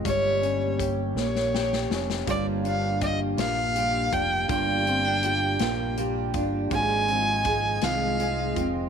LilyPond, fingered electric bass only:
\new Staff \with { instrumentName = "Fingered electric bass" } { \clef bass \time 6/8 \key g \phrygian \tempo 4. = 54 g,,4. bes,,4 f,,8 | g,,4. bes,,4 f,,8 | g,,4. bes,,4 g,,8 | aes,,4. c,4 f,,8 | }